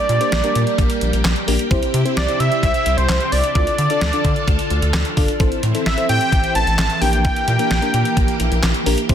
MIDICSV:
0, 0, Header, 1, 6, 480
1, 0, Start_track
1, 0, Tempo, 461538
1, 1776, Time_signature, 4, 2, 24, 8
1, 9513, End_track
2, 0, Start_track
2, 0, Title_t, "Analog synth lead"
2, 0, Program_c, 0, 81
2, 0, Note_on_c, 0, 74, 106
2, 1256, Note_off_c, 0, 74, 0
2, 2254, Note_on_c, 0, 74, 103
2, 2494, Note_on_c, 0, 76, 110
2, 2510, Note_off_c, 0, 74, 0
2, 2726, Note_off_c, 0, 76, 0
2, 2732, Note_on_c, 0, 76, 109
2, 3090, Note_on_c, 0, 72, 98
2, 3106, Note_off_c, 0, 76, 0
2, 3452, Note_on_c, 0, 74, 99
2, 3468, Note_off_c, 0, 72, 0
2, 3684, Note_off_c, 0, 74, 0
2, 3690, Note_on_c, 0, 74, 103
2, 5092, Note_off_c, 0, 74, 0
2, 6097, Note_on_c, 0, 76, 91
2, 6320, Note_off_c, 0, 76, 0
2, 6337, Note_on_c, 0, 79, 110
2, 6783, Note_off_c, 0, 79, 0
2, 6816, Note_on_c, 0, 81, 109
2, 7039, Note_off_c, 0, 81, 0
2, 7055, Note_on_c, 0, 81, 102
2, 7293, Note_on_c, 0, 79, 98
2, 7309, Note_off_c, 0, 81, 0
2, 7528, Note_off_c, 0, 79, 0
2, 7534, Note_on_c, 0, 79, 110
2, 8933, Note_off_c, 0, 79, 0
2, 9513, End_track
3, 0, Start_track
3, 0, Title_t, "FM electric piano"
3, 0, Program_c, 1, 5
3, 214, Note_on_c, 1, 58, 76
3, 214, Note_on_c, 1, 62, 72
3, 214, Note_on_c, 1, 67, 70
3, 215, Note_on_c, 1, 72, 83
3, 369, Note_off_c, 1, 58, 0
3, 369, Note_off_c, 1, 62, 0
3, 369, Note_off_c, 1, 67, 0
3, 369, Note_off_c, 1, 72, 0
3, 456, Note_on_c, 1, 70, 102
3, 457, Note_on_c, 1, 58, 93
3, 457, Note_on_c, 1, 62, 84
3, 457, Note_on_c, 1, 67, 86
3, 1072, Note_off_c, 1, 58, 0
3, 1072, Note_off_c, 1, 62, 0
3, 1072, Note_off_c, 1, 67, 0
3, 1072, Note_off_c, 1, 70, 0
3, 1536, Note_on_c, 1, 58, 92
3, 1536, Note_on_c, 1, 62, 84
3, 1536, Note_on_c, 1, 70, 100
3, 1537, Note_on_c, 1, 67, 83
3, 1690, Note_off_c, 1, 58, 0
3, 1690, Note_off_c, 1, 62, 0
3, 1690, Note_off_c, 1, 67, 0
3, 1690, Note_off_c, 1, 70, 0
3, 1775, Note_on_c, 1, 67, 82
3, 1776, Note_on_c, 1, 60, 87
3, 1776, Note_on_c, 1, 64, 79
3, 1776, Note_on_c, 1, 72, 98
3, 2006, Note_off_c, 1, 67, 0
3, 2007, Note_off_c, 1, 60, 0
3, 2007, Note_off_c, 1, 64, 0
3, 2007, Note_off_c, 1, 72, 0
3, 2135, Note_on_c, 1, 72, 85
3, 2136, Note_on_c, 1, 60, 77
3, 2136, Note_on_c, 1, 64, 71
3, 2136, Note_on_c, 1, 67, 70
3, 2289, Note_off_c, 1, 72, 0
3, 2290, Note_off_c, 1, 60, 0
3, 2290, Note_off_c, 1, 64, 0
3, 2290, Note_off_c, 1, 67, 0
3, 2376, Note_on_c, 1, 60, 78
3, 2376, Note_on_c, 1, 64, 71
3, 2376, Note_on_c, 1, 67, 69
3, 2376, Note_on_c, 1, 72, 83
3, 2991, Note_off_c, 1, 60, 0
3, 2991, Note_off_c, 1, 64, 0
3, 2991, Note_off_c, 1, 67, 0
3, 2992, Note_off_c, 1, 72, 0
3, 3697, Note_on_c, 1, 62, 75
3, 3697, Note_on_c, 1, 65, 68
3, 3697, Note_on_c, 1, 69, 67
3, 3697, Note_on_c, 1, 74, 82
3, 3927, Note_off_c, 1, 62, 0
3, 3927, Note_off_c, 1, 65, 0
3, 3927, Note_off_c, 1, 69, 0
3, 3928, Note_off_c, 1, 74, 0
3, 4055, Note_on_c, 1, 65, 69
3, 4057, Note_on_c, 1, 62, 76
3, 4057, Note_on_c, 1, 69, 68
3, 4057, Note_on_c, 1, 74, 84
3, 4210, Note_off_c, 1, 62, 0
3, 4210, Note_off_c, 1, 65, 0
3, 4210, Note_off_c, 1, 69, 0
3, 4210, Note_off_c, 1, 74, 0
3, 4296, Note_on_c, 1, 74, 101
3, 4297, Note_on_c, 1, 62, 92
3, 4297, Note_on_c, 1, 65, 81
3, 4297, Note_on_c, 1, 69, 85
3, 4912, Note_off_c, 1, 62, 0
3, 4912, Note_off_c, 1, 65, 0
3, 4912, Note_off_c, 1, 69, 0
3, 4912, Note_off_c, 1, 74, 0
3, 5376, Note_on_c, 1, 62, 91
3, 5376, Note_on_c, 1, 65, 80
3, 5376, Note_on_c, 1, 69, 84
3, 5377, Note_on_c, 1, 74, 98
3, 5530, Note_off_c, 1, 62, 0
3, 5530, Note_off_c, 1, 65, 0
3, 5530, Note_off_c, 1, 69, 0
3, 5530, Note_off_c, 1, 74, 0
3, 5614, Note_on_c, 1, 64, 79
3, 5614, Note_on_c, 1, 72, 96
3, 5615, Note_on_c, 1, 60, 88
3, 5615, Note_on_c, 1, 69, 82
3, 5846, Note_off_c, 1, 60, 0
3, 5846, Note_off_c, 1, 64, 0
3, 5846, Note_off_c, 1, 69, 0
3, 5846, Note_off_c, 1, 72, 0
3, 5975, Note_on_c, 1, 69, 69
3, 5976, Note_on_c, 1, 64, 70
3, 5976, Note_on_c, 1, 72, 83
3, 5977, Note_on_c, 1, 60, 76
3, 6130, Note_off_c, 1, 60, 0
3, 6130, Note_off_c, 1, 64, 0
3, 6130, Note_off_c, 1, 69, 0
3, 6130, Note_off_c, 1, 72, 0
3, 6214, Note_on_c, 1, 60, 78
3, 6214, Note_on_c, 1, 64, 73
3, 6214, Note_on_c, 1, 69, 71
3, 6215, Note_on_c, 1, 72, 83
3, 6830, Note_off_c, 1, 60, 0
3, 6831, Note_off_c, 1, 64, 0
3, 6831, Note_off_c, 1, 69, 0
3, 6831, Note_off_c, 1, 72, 0
3, 7295, Note_on_c, 1, 58, 81
3, 7295, Note_on_c, 1, 67, 73
3, 7296, Note_on_c, 1, 62, 73
3, 7296, Note_on_c, 1, 70, 89
3, 7776, Note_off_c, 1, 58, 0
3, 7776, Note_off_c, 1, 62, 0
3, 7776, Note_off_c, 1, 67, 0
3, 7776, Note_off_c, 1, 70, 0
3, 7894, Note_on_c, 1, 58, 74
3, 7895, Note_on_c, 1, 62, 71
3, 7895, Note_on_c, 1, 67, 69
3, 7895, Note_on_c, 1, 70, 84
3, 8049, Note_off_c, 1, 58, 0
3, 8049, Note_off_c, 1, 62, 0
3, 8049, Note_off_c, 1, 67, 0
3, 8050, Note_off_c, 1, 70, 0
3, 8134, Note_on_c, 1, 62, 84
3, 8134, Note_on_c, 1, 67, 85
3, 8134, Note_on_c, 1, 70, 103
3, 8135, Note_on_c, 1, 58, 94
3, 8750, Note_off_c, 1, 62, 0
3, 8750, Note_off_c, 1, 67, 0
3, 8750, Note_off_c, 1, 70, 0
3, 8751, Note_off_c, 1, 58, 0
3, 9217, Note_on_c, 1, 58, 89
3, 9217, Note_on_c, 1, 62, 83
3, 9217, Note_on_c, 1, 67, 83
3, 9217, Note_on_c, 1, 70, 99
3, 9370, Note_off_c, 1, 58, 0
3, 9370, Note_off_c, 1, 62, 0
3, 9370, Note_off_c, 1, 67, 0
3, 9370, Note_off_c, 1, 70, 0
3, 9457, Note_on_c, 1, 60, 90
3, 9457, Note_on_c, 1, 64, 82
3, 9458, Note_on_c, 1, 67, 81
3, 9458, Note_on_c, 1, 72, 97
3, 9513, Note_off_c, 1, 60, 0
3, 9513, Note_off_c, 1, 64, 0
3, 9513, Note_off_c, 1, 67, 0
3, 9513, Note_off_c, 1, 72, 0
3, 9513, End_track
4, 0, Start_track
4, 0, Title_t, "String machine"
4, 0, Program_c, 2, 50
4, 0, Note_on_c, 2, 55, 83
4, 0, Note_on_c, 2, 58, 78
4, 0, Note_on_c, 2, 67, 91
4, 1754, Note_off_c, 2, 58, 0
4, 1755, Note_off_c, 2, 55, 0
4, 1775, Note_on_c, 2, 48, 88
4, 1776, Note_on_c, 2, 60, 77
4, 1776, Note_on_c, 2, 64, 78
4, 3656, Note_off_c, 2, 67, 0
4, 3676, Note_off_c, 2, 48, 0
4, 3677, Note_off_c, 2, 60, 0
4, 3677, Note_off_c, 2, 64, 0
4, 3697, Note_on_c, 2, 50, 89
4, 3697, Note_on_c, 2, 62, 78
4, 3697, Note_on_c, 2, 65, 78
4, 3697, Note_on_c, 2, 69, 93
4, 5597, Note_off_c, 2, 50, 0
4, 5597, Note_off_c, 2, 62, 0
4, 5597, Note_off_c, 2, 65, 0
4, 5597, Note_off_c, 2, 69, 0
4, 5617, Note_on_c, 2, 52, 84
4, 5617, Note_on_c, 2, 60, 78
4, 5617, Note_on_c, 2, 64, 91
4, 7280, Note_off_c, 2, 60, 0
4, 7280, Note_off_c, 2, 64, 0
4, 7298, Note_on_c, 2, 58, 79
4, 7300, Note_on_c, 2, 67, 97
4, 9418, Note_off_c, 2, 52, 0
4, 9435, Note_off_c, 2, 58, 0
4, 9458, Note_on_c, 2, 48, 86
4, 9459, Note_on_c, 2, 60, 80
4, 9459, Note_on_c, 2, 64, 78
4, 9513, Note_off_c, 2, 48, 0
4, 9513, Note_off_c, 2, 60, 0
4, 9513, Note_off_c, 2, 64, 0
4, 9513, Note_off_c, 2, 67, 0
4, 9513, End_track
5, 0, Start_track
5, 0, Title_t, "Analog synth bass"
5, 0, Program_c, 3, 38
5, 95, Note_on_c, 3, 46, 106
5, 193, Note_off_c, 3, 46, 0
5, 336, Note_on_c, 3, 34, 105
5, 433, Note_off_c, 3, 34, 0
5, 577, Note_on_c, 3, 46, 98
5, 674, Note_off_c, 3, 46, 0
5, 815, Note_on_c, 3, 34, 108
5, 912, Note_off_c, 3, 34, 0
5, 1058, Note_on_c, 3, 34, 100
5, 1154, Note_off_c, 3, 34, 0
5, 1177, Note_on_c, 3, 34, 94
5, 1274, Note_off_c, 3, 34, 0
5, 1297, Note_on_c, 3, 34, 113
5, 1393, Note_off_c, 3, 34, 0
5, 1537, Note_on_c, 3, 34, 95
5, 1634, Note_off_c, 3, 34, 0
5, 1777, Note_on_c, 3, 36, 105
5, 1874, Note_off_c, 3, 36, 0
5, 2017, Note_on_c, 3, 48, 106
5, 2113, Note_off_c, 3, 48, 0
5, 2256, Note_on_c, 3, 36, 104
5, 2353, Note_off_c, 3, 36, 0
5, 2496, Note_on_c, 3, 48, 104
5, 2593, Note_off_c, 3, 48, 0
5, 2736, Note_on_c, 3, 36, 108
5, 2833, Note_off_c, 3, 36, 0
5, 2976, Note_on_c, 3, 36, 101
5, 3073, Note_off_c, 3, 36, 0
5, 3096, Note_on_c, 3, 36, 106
5, 3193, Note_off_c, 3, 36, 0
5, 3216, Note_on_c, 3, 36, 112
5, 3313, Note_off_c, 3, 36, 0
5, 3456, Note_on_c, 3, 36, 99
5, 3553, Note_off_c, 3, 36, 0
5, 3696, Note_on_c, 3, 38, 108
5, 3793, Note_off_c, 3, 38, 0
5, 3936, Note_on_c, 3, 50, 99
5, 4033, Note_off_c, 3, 50, 0
5, 4176, Note_on_c, 3, 38, 101
5, 4273, Note_off_c, 3, 38, 0
5, 4415, Note_on_c, 3, 50, 105
5, 4512, Note_off_c, 3, 50, 0
5, 4655, Note_on_c, 3, 38, 108
5, 4752, Note_off_c, 3, 38, 0
5, 4895, Note_on_c, 3, 38, 103
5, 4992, Note_off_c, 3, 38, 0
5, 5015, Note_on_c, 3, 38, 94
5, 5113, Note_off_c, 3, 38, 0
5, 5135, Note_on_c, 3, 38, 105
5, 5232, Note_off_c, 3, 38, 0
5, 5379, Note_on_c, 3, 31, 97
5, 5474, Note_off_c, 3, 31, 0
5, 5615, Note_on_c, 3, 33, 110
5, 5713, Note_off_c, 3, 33, 0
5, 5856, Note_on_c, 3, 45, 103
5, 5953, Note_off_c, 3, 45, 0
5, 6095, Note_on_c, 3, 33, 102
5, 6192, Note_off_c, 3, 33, 0
5, 6337, Note_on_c, 3, 45, 101
5, 6433, Note_off_c, 3, 45, 0
5, 6576, Note_on_c, 3, 33, 103
5, 6673, Note_off_c, 3, 33, 0
5, 6814, Note_on_c, 3, 33, 103
5, 6912, Note_off_c, 3, 33, 0
5, 6936, Note_on_c, 3, 33, 94
5, 7033, Note_off_c, 3, 33, 0
5, 7055, Note_on_c, 3, 33, 106
5, 7153, Note_off_c, 3, 33, 0
5, 7295, Note_on_c, 3, 34, 101
5, 7586, Note_off_c, 3, 34, 0
5, 7777, Note_on_c, 3, 46, 105
5, 7873, Note_off_c, 3, 46, 0
5, 8016, Note_on_c, 3, 34, 102
5, 8113, Note_off_c, 3, 34, 0
5, 8256, Note_on_c, 3, 46, 96
5, 8353, Note_off_c, 3, 46, 0
5, 8496, Note_on_c, 3, 34, 105
5, 8593, Note_off_c, 3, 34, 0
5, 8737, Note_on_c, 3, 34, 97
5, 8833, Note_off_c, 3, 34, 0
5, 8857, Note_on_c, 3, 34, 98
5, 8953, Note_off_c, 3, 34, 0
5, 8977, Note_on_c, 3, 34, 114
5, 9074, Note_off_c, 3, 34, 0
5, 9217, Note_on_c, 3, 34, 90
5, 9314, Note_off_c, 3, 34, 0
5, 9457, Note_on_c, 3, 36, 105
5, 9513, Note_off_c, 3, 36, 0
5, 9513, End_track
6, 0, Start_track
6, 0, Title_t, "Drums"
6, 96, Note_on_c, 9, 42, 84
6, 200, Note_off_c, 9, 42, 0
6, 216, Note_on_c, 9, 42, 54
6, 320, Note_off_c, 9, 42, 0
6, 335, Note_on_c, 9, 42, 80
6, 336, Note_on_c, 9, 38, 119
6, 439, Note_off_c, 9, 42, 0
6, 440, Note_off_c, 9, 38, 0
6, 456, Note_on_c, 9, 42, 59
6, 560, Note_off_c, 9, 42, 0
6, 577, Note_on_c, 9, 42, 83
6, 681, Note_off_c, 9, 42, 0
6, 696, Note_on_c, 9, 42, 46
6, 800, Note_off_c, 9, 42, 0
6, 815, Note_on_c, 9, 36, 97
6, 818, Note_on_c, 9, 42, 76
6, 919, Note_off_c, 9, 36, 0
6, 922, Note_off_c, 9, 42, 0
6, 933, Note_on_c, 9, 42, 62
6, 1037, Note_off_c, 9, 42, 0
6, 1054, Note_on_c, 9, 42, 78
6, 1158, Note_off_c, 9, 42, 0
6, 1178, Note_on_c, 9, 42, 55
6, 1282, Note_off_c, 9, 42, 0
6, 1298, Note_on_c, 9, 38, 115
6, 1298, Note_on_c, 9, 39, 92
6, 1298, Note_on_c, 9, 42, 91
6, 1402, Note_off_c, 9, 38, 0
6, 1402, Note_off_c, 9, 39, 0
6, 1402, Note_off_c, 9, 42, 0
6, 1414, Note_on_c, 9, 42, 52
6, 1518, Note_off_c, 9, 42, 0
6, 1538, Note_on_c, 9, 46, 86
6, 1642, Note_off_c, 9, 46, 0
6, 1656, Note_on_c, 9, 42, 52
6, 1760, Note_off_c, 9, 42, 0
6, 1777, Note_on_c, 9, 36, 116
6, 1777, Note_on_c, 9, 42, 75
6, 1881, Note_off_c, 9, 36, 0
6, 1881, Note_off_c, 9, 42, 0
6, 1899, Note_on_c, 9, 42, 56
6, 2003, Note_off_c, 9, 42, 0
6, 2017, Note_on_c, 9, 42, 88
6, 2121, Note_off_c, 9, 42, 0
6, 2138, Note_on_c, 9, 42, 56
6, 2242, Note_off_c, 9, 42, 0
6, 2256, Note_on_c, 9, 42, 84
6, 2257, Note_on_c, 9, 38, 122
6, 2360, Note_off_c, 9, 42, 0
6, 2361, Note_off_c, 9, 38, 0
6, 2377, Note_on_c, 9, 42, 62
6, 2481, Note_off_c, 9, 42, 0
6, 2498, Note_on_c, 9, 42, 80
6, 2602, Note_off_c, 9, 42, 0
6, 2617, Note_on_c, 9, 42, 48
6, 2721, Note_off_c, 9, 42, 0
6, 2736, Note_on_c, 9, 36, 95
6, 2739, Note_on_c, 9, 42, 77
6, 2840, Note_off_c, 9, 36, 0
6, 2843, Note_off_c, 9, 42, 0
6, 2853, Note_on_c, 9, 42, 63
6, 2957, Note_off_c, 9, 42, 0
6, 2974, Note_on_c, 9, 42, 78
6, 3078, Note_off_c, 9, 42, 0
6, 3097, Note_on_c, 9, 42, 55
6, 3201, Note_off_c, 9, 42, 0
6, 3216, Note_on_c, 9, 38, 115
6, 3216, Note_on_c, 9, 39, 94
6, 3216, Note_on_c, 9, 42, 90
6, 3320, Note_off_c, 9, 38, 0
6, 3320, Note_off_c, 9, 39, 0
6, 3320, Note_off_c, 9, 42, 0
6, 3333, Note_on_c, 9, 42, 53
6, 3437, Note_off_c, 9, 42, 0
6, 3456, Note_on_c, 9, 46, 85
6, 3560, Note_off_c, 9, 46, 0
6, 3574, Note_on_c, 9, 42, 53
6, 3678, Note_off_c, 9, 42, 0
6, 3695, Note_on_c, 9, 36, 116
6, 3695, Note_on_c, 9, 42, 75
6, 3799, Note_off_c, 9, 36, 0
6, 3799, Note_off_c, 9, 42, 0
6, 3817, Note_on_c, 9, 42, 55
6, 3921, Note_off_c, 9, 42, 0
6, 3936, Note_on_c, 9, 42, 88
6, 4040, Note_off_c, 9, 42, 0
6, 4056, Note_on_c, 9, 42, 55
6, 4160, Note_off_c, 9, 42, 0
6, 4174, Note_on_c, 9, 42, 83
6, 4175, Note_on_c, 9, 38, 117
6, 4278, Note_off_c, 9, 42, 0
6, 4279, Note_off_c, 9, 38, 0
6, 4295, Note_on_c, 9, 42, 62
6, 4399, Note_off_c, 9, 42, 0
6, 4415, Note_on_c, 9, 36, 84
6, 4417, Note_on_c, 9, 42, 83
6, 4519, Note_off_c, 9, 36, 0
6, 4521, Note_off_c, 9, 42, 0
6, 4535, Note_on_c, 9, 42, 47
6, 4639, Note_off_c, 9, 42, 0
6, 4655, Note_on_c, 9, 36, 94
6, 4658, Note_on_c, 9, 42, 74
6, 4759, Note_off_c, 9, 36, 0
6, 4762, Note_off_c, 9, 42, 0
6, 4772, Note_on_c, 9, 42, 61
6, 4876, Note_off_c, 9, 42, 0
6, 4893, Note_on_c, 9, 42, 76
6, 4997, Note_off_c, 9, 42, 0
6, 5017, Note_on_c, 9, 42, 55
6, 5121, Note_off_c, 9, 42, 0
6, 5136, Note_on_c, 9, 38, 116
6, 5136, Note_on_c, 9, 39, 93
6, 5136, Note_on_c, 9, 42, 89
6, 5240, Note_off_c, 9, 38, 0
6, 5240, Note_off_c, 9, 39, 0
6, 5240, Note_off_c, 9, 42, 0
6, 5253, Note_on_c, 9, 42, 53
6, 5357, Note_off_c, 9, 42, 0
6, 5377, Note_on_c, 9, 46, 86
6, 5378, Note_on_c, 9, 36, 89
6, 5481, Note_off_c, 9, 46, 0
6, 5482, Note_off_c, 9, 36, 0
6, 5495, Note_on_c, 9, 42, 55
6, 5599, Note_off_c, 9, 42, 0
6, 5615, Note_on_c, 9, 42, 72
6, 5616, Note_on_c, 9, 36, 112
6, 5719, Note_off_c, 9, 42, 0
6, 5720, Note_off_c, 9, 36, 0
6, 5738, Note_on_c, 9, 42, 53
6, 5842, Note_off_c, 9, 42, 0
6, 5856, Note_on_c, 9, 42, 88
6, 5960, Note_off_c, 9, 42, 0
6, 5977, Note_on_c, 9, 42, 54
6, 6081, Note_off_c, 9, 42, 0
6, 6096, Note_on_c, 9, 42, 82
6, 6097, Note_on_c, 9, 38, 122
6, 6200, Note_off_c, 9, 42, 0
6, 6201, Note_off_c, 9, 38, 0
6, 6216, Note_on_c, 9, 42, 59
6, 6320, Note_off_c, 9, 42, 0
6, 6337, Note_on_c, 9, 42, 83
6, 6441, Note_off_c, 9, 42, 0
6, 6457, Note_on_c, 9, 42, 48
6, 6561, Note_off_c, 9, 42, 0
6, 6576, Note_on_c, 9, 36, 92
6, 6579, Note_on_c, 9, 42, 74
6, 6680, Note_off_c, 9, 36, 0
6, 6683, Note_off_c, 9, 42, 0
6, 6694, Note_on_c, 9, 42, 61
6, 6798, Note_off_c, 9, 42, 0
6, 6814, Note_on_c, 9, 42, 77
6, 6918, Note_off_c, 9, 42, 0
6, 6939, Note_on_c, 9, 42, 52
6, 7043, Note_off_c, 9, 42, 0
6, 7058, Note_on_c, 9, 38, 114
6, 7058, Note_on_c, 9, 39, 97
6, 7058, Note_on_c, 9, 42, 92
6, 7162, Note_off_c, 9, 38, 0
6, 7162, Note_off_c, 9, 39, 0
6, 7162, Note_off_c, 9, 42, 0
6, 7174, Note_on_c, 9, 42, 56
6, 7278, Note_off_c, 9, 42, 0
6, 7297, Note_on_c, 9, 46, 85
6, 7401, Note_off_c, 9, 46, 0
6, 7415, Note_on_c, 9, 42, 53
6, 7519, Note_off_c, 9, 42, 0
6, 7536, Note_on_c, 9, 36, 115
6, 7536, Note_on_c, 9, 42, 75
6, 7640, Note_off_c, 9, 36, 0
6, 7640, Note_off_c, 9, 42, 0
6, 7659, Note_on_c, 9, 42, 55
6, 7763, Note_off_c, 9, 42, 0
6, 7776, Note_on_c, 9, 42, 85
6, 7880, Note_off_c, 9, 42, 0
6, 7896, Note_on_c, 9, 42, 56
6, 8000, Note_off_c, 9, 42, 0
6, 8015, Note_on_c, 9, 42, 82
6, 8016, Note_on_c, 9, 38, 123
6, 8119, Note_off_c, 9, 42, 0
6, 8120, Note_off_c, 9, 38, 0
6, 8136, Note_on_c, 9, 42, 60
6, 8240, Note_off_c, 9, 42, 0
6, 8256, Note_on_c, 9, 42, 83
6, 8360, Note_off_c, 9, 42, 0
6, 8376, Note_on_c, 9, 42, 47
6, 8480, Note_off_c, 9, 42, 0
6, 8495, Note_on_c, 9, 36, 94
6, 8497, Note_on_c, 9, 42, 75
6, 8599, Note_off_c, 9, 36, 0
6, 8601, Note_off_c, 9, 42, 0
6, 8612, Note_on_c, 9, 42, 64
6, 8716, Note_off_c, 9, 42, 0
6, 8734, Note_on_c, 9, 42, 78
6, 8838, Note_off_c, 9, 42, 0
6, 8857, Note_on_c, 9, 42, 54
6, 8961, Note_off_c, 9, 42, 0
6, 8977, Note_on_c, 9, 38, 113
6, 8977, Note_on_c, 9, 39, 95
6, 8977, Note_on_c, 9, 42, 90
6, 9081, Note_off_c, 9, 38, 0
6, 9081, Note_off_c, 9, 39, 0
6, 9081, Note_off_c, 9, 42, 0
6, 9094, Note_on_c, 9, 42, 55
6, 9198, Note_off_c, 9, 42, 0
6, 9218, Note_on_c, 9, 46, 88
6, 9322, Note_off_c, 9, 46, 0
6, 9336, Note_on_c, 9, 42, 54
6, 9440, Note_off_c, 9, 42, 0
6, 9457, Note_on_c, 9, 36, 111
6, 9457, Note_on_c, 9, 42, 76
6, 9513, Note_off_c, 9, 36, 0
6, 9513, Note_off_c, 9, 42, 0
6, 9513, End_track
0, 0, End_of_file